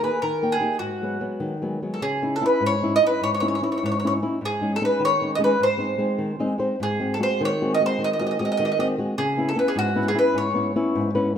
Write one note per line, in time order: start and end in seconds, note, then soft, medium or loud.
0.03 0.18 A#3 soft
0.03 0.18 D#4 soft
0.03 0.18 G#4 soft
0.03 0.21 B4 medium
0.22 0.60 D#3 medium
0.22 0.53 A#4 medium
0.42 0.60 A#3 soft
0.42 0.59 D#4 soft
0.42 0.74 G5 medium
0.52 0.79 G#4 medium
0.61 0.76 A#3 soft
0.61 0.76 D#4 soft
0.61 0.77 G4 soft
0.79 1.19 G#2 medium
0.79 1.57 F#4 medium
1.02 1.19 F#3 soft
1.02 1.19 G#3 soft
1.02 1.20 B3 soft
1.20 1.53 F#3 soft
1.20 1.53 G#3 soft
1.20 1.53 B3 medium
1.40 1.80 D#3 medium
1.62 1.81 F#3 soft
1.62 1.81 G#3 soft
1.62 1.82 B3 soft
1.82 1.98 F#3 soft
1.82 1.98 G#3 soft
1.82 1.98 B3 soft
1.94 2.01 A4 medium
2.02 2.41 C#3 medium
2.02 2.33 G#4 medium
2.22 2.40 C#4 soft
2.22 2.41 D#4 soft
2.22 2.41 E4 soft
2.36 2.44 A4 medium
2.41 2.74 C#4 medium
2.41 2.74 D#4 soft
2.41 2.75 E4 soft
2.46 2.62 B4 medium
2.61 3.00 G#2 medium
2.66 2.93 C#5 loud
2.83 3.00 C#4 soft
2.83 3.01 D#4 soft
2.83 3.01 E4 medium
2.96 3.03 D#5 loud
3.02 3.34 C#4 soft
3.02 3.34 D#4 soft
3.02 3.35 E4 medium
3.07 3.23 B4 medium
3.22 3.61 G#2 medium
3.22 3.30 C#5 loud
3.34 3.39 C#5 medium
3.40 3.60 C#4 soft
3.40 3.61 D#4 soft
3.40 3.62 E4 soft
3.40 3.46 C#5 medium
3.48 3.53 C#5 soft
3.55 3.60 C#5 medium
3.62 3.94 C#4 soft
3.62 3.94 D#4 soft
3.62 3.95 E4 medium
3.62 3.68 C#5 medium
3.72 3.76 C#5 medium
3.78 3.83 C#5 medium
3.83 4.21 G#2 medium
3.83 3.90 C#5 medium
3.92 3.97 C#5 medium
4.00 4.05 C#5 medium
4.04 4.21 C#4 soft
4.04 4.21 D#4 soft
4.04 4.21 E4 medium
4.04 4.12 C#5 medium
4.22 4.38 C#4 soft
4.22 4.38 D#4 soft
4.22 4.38 E4 medium
4.41 4.79 G#2 medium
4.45 4.71 G#4 medium
4.61 4.80 G#3 soft
4.61 4.80 C#4 soft
4.61 4.80 D#4 medium
4.76 4.83 A4 medium
4.81 5.13 G#3 soft
4.81 5.13 C#4 soft
4.81 5.13 D#4 medium
4.81 5.01 B4 medium
5.00 5.38 D#3 medium
5.05 5.31 C#5 loud
5.21 5.37 G#3 soft
5.21 5.39 C#4 soft
5.21 5.39 D#4 medium
5.35 5.55 G#3 soft
5.35 5.39 D#5 medium
5.40 5.55 C#4 soft
5.40 5.56 D#4 medium
5.44 5.60 B4 medium
5.60 5.98 G#2 medium
5.60 6.57 C5 medium
5.77 5.97 G#3 soft
5.77 5.97 C4 soft
5.77 5.98 D#4 soft
5.98 6.31 G#3 soft
5.98 6.31 C4 soft
5.98 6.31 D#4 soft
6.18 6.39 D#3 medium
6.39 6.57 G#3 soft
6.39 6.57 C4 soft
6.39 6.58 D#4 medium
6.39 6.58 D#5 medium
6.58 6.74 G#3 soft
6.58 6.75 C4 soft
6.58 6.75 D#4 soft
6.58 6.78 C5 medium
6.80 7.19 G#2 medium
6.80 7.13 G#4 medium
7.00 7.18 G#3 soft
7.00 7.19 C4 soft
7.00 7.19 F#4 soft
7.14 7.18 A4 medium
7.19 7.52 G#3 soft
7.19 7.52 C4 soft
7.19 7.52 F#4 soft
7.19 7.42 C5 medium
7.41 7.79 D#3 medium
7.45 7.73 C#5 medium
7.61 7.79 G#3 soft
7.61 7.79 C4 soft
7.61 7.80 F#4 soft
7.74 7.82 D#5 medium
7.80 8.12 G#3 soft
7.80 8.12 C4 soft
7.80 8.13 F#4 medium
7.86 8.03 C5 medium
7.99 8.38 D#3 medium
8.04 8.09 D#5 medium
8.13 8.17 D#5 medium
8.19 8.38 G#3 soft
8.19 8.39 C4 soft
8.19 8.39 F#4 soft
8.19 8.24 D#5 medium
8.27 8.30 D#5 medium
8.31 8.37 D#5 medium
8.39 8.71 G#3 medium
8.39 8.72 C4 soft
8.39 8.72 F#4 soft
8.39 8.44 D#5 medium
8.45 8.50 D#5 medium
8.52 8.56 D#5 medium
8.57 8.97 D#3 medium
8.57 8.64 D#5 medium
8.65 8.70 D#5 medium
8.72 8.79 D#5 medium
8.79 8.97 G#3 soft
8.79 8.97 C4 soft
8.79 8.98 F#4 medium
8.79 8.87 D#5 medium
8.98 9.14 G#3 soft
8.98 9.14 C4 soft
8.98 9.14 F#4 soft
9.18 9.56 C#3 medium
9.18 9.48 G#4 medium
9.37 9.54 B3 soft
9.37 9.55 C#4 soft
9.37 9.56 E4 medium
9.49 9.58 A4 medium
9.56 9.88 B3 soft
9.56 9.88 C#4 soft
9.56 9.89 E4 soft
9.56 9.70 B4 medium
9.68 9.76 G#4 medium
9.76 10.15 G#2 medium
9.76 10.08 F#4 medium
9.96 10.14 B3 medium
9.96 10.13 C#4 soft
9.96 10.14 E4 medium
10.08 10.16 G#4 medium
10.15 10.47 B3 soft
10.15 10.47 C#4 soft
10.15 10.48 E4 medium
10.19 10.36 B4 medium
10.34 10.74 G#2 medium
10.34 11.14 C#5 medium
10.54 10.74 B3 soft
10.54 10.75 C#4 soft
10.54 10.75 E4 soft
10.76 11.08 B3 medium
10.76 11.08 C#4 soft
10.76 11.08 E4 medium
10.95 11.35 G#2 medium
11.15 11.34 B3 soft
11.15 11.35 C#4 soft
11.15 11.35 E4 soft
11.15 11.34 B4 medium